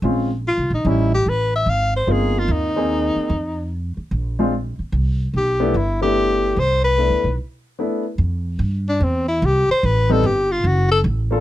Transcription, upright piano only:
0.03 G#3 C4 C#4 F4
0.86 G3 C#4 D#4 E4
2.07 A#3 C4 D#4 F4
2.76 A#3 C4 D#4 G#4
4.39 G#3 C4 D4 F4
5.60 A3 B3 D4 E4
6.01 A3 B3 D4 E4
6.97 A3 B3 D4 E4
7.79 A3 B3 D4 E4
10.09 G3 B3 C4 D#4
11.31 A#3 D4 F4 A4

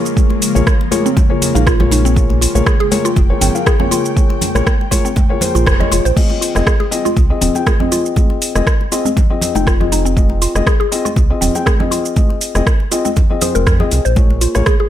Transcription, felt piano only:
Already playing: A#3 F4 G#4 C#5
0.17 A#3 F4 G#4 C#5
0.55 A#3 F4 G#4 C#5
0.91 A#3 F4 G#4 C#5
1.30 A#3 F4 G#4 C#5
1.55 A#3 F4 G#4 F5
1.80 A#3 F4 G#4 C#5
2.16 A#3 F4 C#5
2.55 A#3 F4 G#4 C#5
2.91 A#3 F4 G#4 C#5
3.30 A#3 F4 G#4 C#5
3.55 A#3 F4 G#4 F5
3.80 A#3 F4 G#4 C#5
4.16 A#3 F4 G#4 C#5
4.55 A#3 F4 G#4 C#5
4.91 A#3 F4 G#4 C#5
5.30 A#3 F4 G#4 C#5
5.41 A#3 F4 G#4 C5
5.80 A#3 F4 G#4 C#5
5.91 A#3 F4 G#4 C#5
6.16 C4 F4 G#4 D#5
6.55 C4 F4 G#4 D#5
6.91 C4 F4 G#4 D#5
7.30 C4 F4 G#4 D#5
7.55 C4 F4 G#4 G5
7.80 C4 F4 G#4 D#5
8.17 C4 F4 G#4 D#5
8.55 C4 F4 G#4 D#5
8.92 C4 F4 G#4 D#5
9.30 C4 F4 G#4 D#5
9.55 C4 F4 G#4 G5
9.80 C4 F4 G#4 D#5
10.17 C4 F4 G#4 D#5
10.55 C4 F4 G#4 D#5
10.92 C4 F4 G#4 D#5
11.30 C4 F4 G#4 D#5
11.55 C4 F4 G#4 G5
11.80 C4 F4 G#4 D#5
12.17 C4 F4 G#4 D#5
12.55 C4 F4 G#4 D#5
12.92 C4 F4 G#4 D#5
13.30 C4 F4 G#4 D#5
13.42 C4 F4 G#4 C5
13.80 C4 F4 G#4 D#5
13.92 C4 F4 G#4 D#5
14.17 A#3 F4 G#4 C#5
14.55 A#3 F4 G#4 C#5

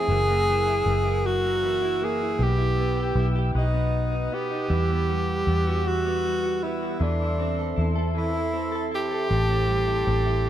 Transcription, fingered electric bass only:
0.08 F#1
0.86 F#1
2.39 B1
3.15 B1
3.55 B1
4.70 E2
5.47 E2
7.01 E2
7.78 E2
9.31 A1
10.07 A1

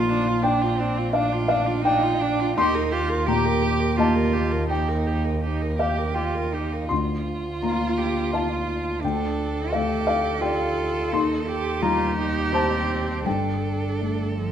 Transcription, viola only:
Already playing: F4
0.09 D4
0.28 F4
0.44 D4
0.62 F4
0.80 D4
0.98 F4
1.15 D4
1.33 F4
1.49 D4
1.66 F4
1.84 D4
2.03 F4
2.21 D4
2.40 F4
2.58 G4
2.75 A#4
2.92 G4
3.09 A#4
3.26 G4
3.45 A#4
3.62 G4
3.80 A#4
3.98 G4
4.15 A#4
4.33 G4
4.52 A#4
4.69 G4
4.88 A#4
5.07 G4
5.25 A#4
5.43 G4
5.62 A#4
5.80 G4
5.98 A#4
6.15 G4
6.35 A#4
6.54 G4
6.73 A#4
6.90 F4
9.04 A4
11.85 G4
13.27 A4

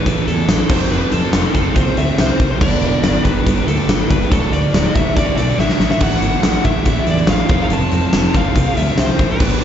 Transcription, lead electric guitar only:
Already playing: B4
0.27 A4
0.70 C5
0.91 B4
1.13 A4
1.55 A4
1.76 C5
1.98 E5
2.20 C5
2.51 C5
2.62 D5
3.24 B4
3.67 A4
4.10 B4
4.32 A4
4.52 D5
4.95 E5
5.16 D5
5.37 D5
5.60 E5
5.92 E5
6.02 F#5
6.65 E5
7.10 D5
7.30 F5
7.63 F5
7.73 A5
8.37 F5
8.77 E5
8.99 C5
9.31 B4

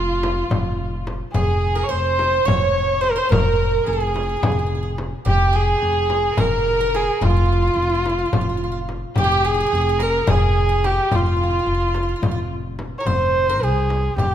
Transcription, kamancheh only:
Already playing: F4
1.33 G#4
1.84 C#5
1.91 C5
2.46 C#5
3.01 C5
3.11 A#4
3.18 C5
3.32 A#4
3.89 G#4
5.28 G4
5.56 G#4
6.40 A#4
6.96 G#4
7.24 F4
9.20 G4
9.46 G#4
10.02 A#4
10.31 G#4
10.86 G4
11.15 F4
12.99 C#5
13.06 C5
13.64 G#4
14.18 G4

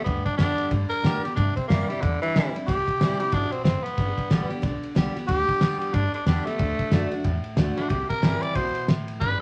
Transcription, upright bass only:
0.06 D2
0.38 F#2
0.58 muted upright bass stroke
0.71 G2
1.03 A2
1.23 muted upright bass stroke
1.37 G2
1.69 F#2
2.03 E2
2.34 D2
2.55 muted upright bass stroke
2.68 C2
2.88 muted upright bass stroke
3.00 A1
3.20 muted upright bass stroke
3.33 G1
3.52 muted upright bass stroke
3.64 F#1
3.83 muted upright bass stroke
3.98 G1
4.30 A1
4.63 B1
4.82 muted upright bass stroke
4.95 C2
5.16 muted upright bass stroke
5.29 D2
5.61 F#2
5.81 muted upright bass stroke
5.94 G2
6.14 muted upright bass stroke
6.26 E2
6.60 D2
6.92 F#2
7.25 E2
7.56 D2
7.90 C2
8.10 muted upright bass stroke
8.23 G1
8.55 B1
8.75 muted upright bass stroke
8.89 A1
9.21 G1

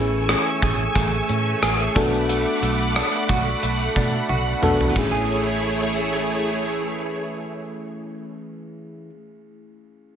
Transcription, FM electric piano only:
Already playing: A3 C#4 E4 G#4
1.95 B3 D4 F#4 A4
4.62 B3 D4 F#4 A4
4.94 A3 C#4 E4
4.99 G#4

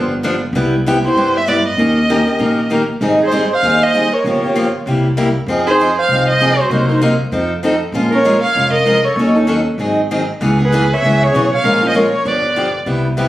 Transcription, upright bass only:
Already playing: G1
0.53 C2
1.15 G2
1.77 D#2
2.40 A#1
3.01 G#1
3.62 D#2
4.24 G1
4.86 C2
5.46 F2
6.08 C2
6.70 C2
7.31 F2
7.92 A#1
8.55 F1
9.16 D#2
9.78 G#1
10.41 C#2
11.02 C#2
11.33 B1
11.64 A#1
12.25 G1
12.86 C2

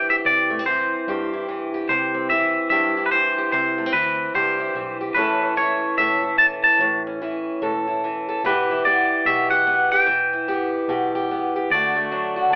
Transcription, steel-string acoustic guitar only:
Already playing: G2 E3 C4 E4 G4
0.11 G4
0.26 C3
0.50 A3
0.59 C4
0.68 E3 E4
1.08 G2 G4
1.33 E4
1.49 E3
1.74 G4
1.90 C3
2.14 C4
2.31 E3 E4
2.71 G2 G4
2.97 E4
3.12 E3
3.38 G4
3.53 C3
3.78 A3
3.86 C4
3.94 E3 E4
4.35 G2 G4
4.59 E4
4.75 E3
5.01 G4
5.16 A2 E3 C#4 E4 A4
5.42 C#4
5.57 E3 E4
5.98 A2 A4
6.24 E4
6.40 E3
6.66 A4
6.81 A2
7.07 C#4
7.22 E3 E4
7.62 A2 A4
7.88 E4
8.04 E3
8.29 A4
8.44 E3 B3 E4 G4
8.71 E4
8.86 B3 G4
9.27 B2 G4
9.51 G4
9.67 B3
9.92 G4
10.06 E3
10.33 E4
10.48 B3 G4
10.89 B2 G4
11.15 G4
11.31 B3
11.56 G4
11.72 D3 A3 D4 F#4
11.96 A3
12.11 F#3 D4
12.36 F#4
12.52 A2

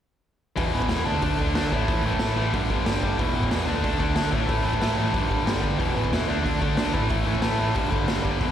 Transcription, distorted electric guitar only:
0.56 E2 B2 E3
0.73 E2 B2 E3
0.89 E2 B2 E3
1.05 D3 A3 D4
1.22 D3 A3 D4
1.38 D3 A3 D4
1.55 D3 A3 D4
1.72 A2 E3 A3
1.87 A2 E3 A3
2.05 A2 E3 A3
2.21 A2 E3 A3
2.37 A2 E3 A3
2.53 G2 D3 G3
2.70 G2 D3 G3
2.85 G2 D3 G3
3.01 G2 D3 G3
3.17 E2 B2 E3
3.34 E2 B2 E3
3.51 E2 B2 E3
3.67 D3 A3 D4
3.83 D3 A3 D4
3.99 D3 A3 D4
4.16 D3 A3 D4
4.31 A2 E3 A3
4.47 A2 E3 A3
4.64 A2 E3 A3
4.80 A2 E3 A3
4.97 A2 E3 A3
5.12 G2 D3 G3
5.28 G2 D3 G3
5.45 G2 D3 G3
5.61 G2 D3 G3
5.78 E2 B2 E3
5.95 E2 B2 E3
6.11 E2 B2 E3
6.28 D3 A3 D4
6.44 D3 A3 D4
6.61 D3 A3 D4
6.78 D3 A3 D4
6.93 A2 E3 A3
7.10 A2 E3 A3
7.26 A2 E3 A3
7.41 A2 E3 A3
7.59 A2 E3 A3
7.74 G2 D3 G3
7.90 G2 D3 G3
8.07 G2 D3 G3
8.22 G2 D3 G3
8.40 E2 B2 E3

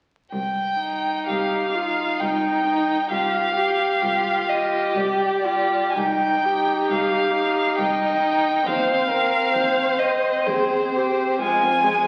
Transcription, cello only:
0.32 C2
1.28 C2
2.20 C2
3.10 C2
4.02 C2
4.95 C2
5.96 C2
6.90 C2
7.78 C2
8.67 D#2
9.54 D#2
10.47 D#2
11.41 F2

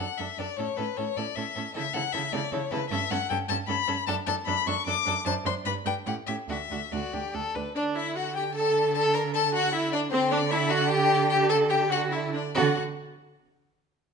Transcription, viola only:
0.00 D4
0.19 D4
0.39 D4
0.59 C#4
0.79 C#4
0.98 C#4
1.18 C#4
1.38 C#4
1.57 C#4
1.76 E4
1.95 E4
2.14 E4
2.34 E4
2.53 E4
2.73 E4
2.92 C#4
3.12 C#4
3.31 C#4
3.50 C#4
3.69 C#4
3.88 C#4
4.08 D4
4.27 D4
4.48 D4
4.67 D4
4.87 D4
5.06 D4
5.26 D4
5.45 D4
5.66 D4
5.86 D4
6.06 C#4
6.28 C#4
6.49 D4
6.71 D4
6.92 D4
7.13 D4
7.34 D4
7.55 D4
7.76 D4
7.96 E4
8.15 F#4
8.36 G4
8.56 A4
8.96 A4
9.15 A#4
9.35 A4
9.54 F#4
9.74 E4
9.93 D4
10.13 C4
10.32 D4
10.52 E4
10.71 F#4
10.90 G4
11.30 G4
11.49 A4
11.70 G4
11.91 F#4
12.12 E4
12.34 D4
12.56 F#4

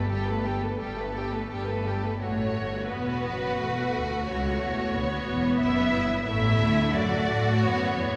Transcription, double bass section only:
0.10 G1
0.82 G1
1.52 G1
2.24 A1
2.59 G1
2.94 E1
3.28 F#1
3.63 E1
3.97 D2
4.30 C#2
4.64 E1
4.96 D2
5.28 E1
5.61 F#1
5.93 G1
6.27 A1
6.59 D2
6.94 F#2
7.26 A2
7.61 F#2
7.98 E2

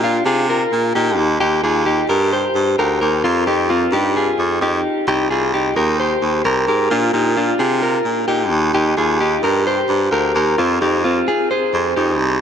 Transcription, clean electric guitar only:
0.04 D4 F4
0.26 F4 G#4
0.50 F4 A#4
0.95 D#4 G4
1.40 D#4 G4
1.64 F4 G#4
1.86 D#4 G4
2.09 G4 A#4
2.33 G4 C5
2.79 G4 A#4
3.01 G4 A#4
3.24 C4 F4
3.47 D#4 G4
3.70 C4 F4
3.93 D#4 G4
4.17 F4 G#4
4.62 D#4 G4
5.08 D#4 G4
5.30 F4 G#4
5.54 D#4 G4
5.77 G4 A#4
6.00 G4 C5
6.45 G4 A#4
6.68 G4 A#4
6.91 D4 F4
7.14 D#4 G4
7.37 D4 F4
7.59 F4 G#4
7.82 F4 A#4
8.28 D#4 G4
8.75 D#4 G4
8.98 F4 G#4
9.20 D#4 G4
9.44 G4 A#4
9.67 G4 C5
10.12 G4 A#4
10.36 G4 A#4
10.58 C4 F4
10.82 D#4 G4
11.04 C4 F4
11.28 F4 G#4
11.51 G#4 C5
11.96 D#4 G4

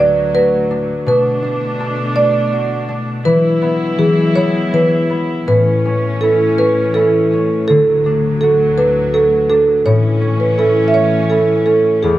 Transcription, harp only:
Already playing: D3 A3 D4 F#4
0.34 F#4
0.71 D4
1.06 B2
1.43 D4
1.80 A4
2.16 D4
2.53 F#4
2.89 D4
3.25 E3
3.62 B3
3.98 E3
4.36 B3
4.73 E3
5.10 B3
5.47 A2
5.86 C#4
6.22 E4
6.58 C#4
6.96 E4
7.33 C#4
7.70 D3
8.06 D4
8.43 F#4
8.78 D4
9.14 F#4
9.50 D4
9.86 A2
10.21 C#4
10.58 E4
10.94 C#4
11.30 E4
11.67 C#4
12.04 E2

